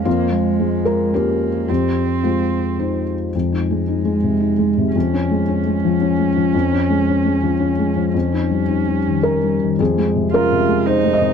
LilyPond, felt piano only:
<<
  \new Staff \with { instrumentName = "Felt piano" } { \time 3/4 \key f \minor \tempo 4 = 111 f'4. bes'8 g'4 | g'4 f'4. r8 | r2. | r2. |
r2. | r2 bes'4 | aes'4 bes'4 c''8 ees''8 | }
  \new Staff \with { instrumentName = "Felt piano" } { \clef bass \time 3/4 \key f \minor f,4 aes4 <des' bes'>4 | f,4 aes4 <ees' c''>4 | \tuplet 3/2 { f,8 ees'8 aes8 ees'8 aes8 c8 ees'8 aes8 c8 } | \tuplet 3/2 { f,8 des'8 aes8 des'8 aes8 f8 des'8 aes8 f8 } |
\tuplet 3/2 { f,8 des'8 aes8 des'8 aes8 f8 des'8 aes8 f8 } | \tuplet 3/2 { f,8 ees'8 g8 ees'8 g8 ees8 ees'8 g8 ees8 } | \tuplet 3/2 { f,8 aes8 c8 des8 c8 aes8 ees'8 aes8 c8 } | }
>>